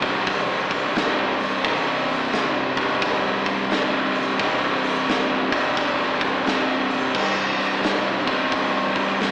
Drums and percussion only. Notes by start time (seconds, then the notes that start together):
0.02 kick, open hi-hat
0.27 kick, open hi-hat
0.71 kick, open hi-hat
0.96 snare, open hi-hat
1.40 open hi-hat
1.64 kick, open hi-hat
2.08 open hi-hat
2.33 snare, open hi-hat
2.77 kick, open hi-hat
3.02 kick, open hi-hat
3.46 kick, open hi-hat
3.71 snare, open hi-hat
4.15 open hi-hat
4.39 kick, open hi-hat
4.84 open hi-hat
5.08 snare, open hi-hat
5.52 kick, open hi-hat
5.77 kick, open hi-hat
6.21 kick, open hi-hat
6.46 snare, open hi-hat
6.90 open hi-hat
7.15 kick, crash
7.59 open hi-hat
7.83 snare, open hi-hat
8.27 kick, open hi-hat
8.52 kick, open hi-hat
8.96 kick, open hi-hat
9.21 snare, open hi-hat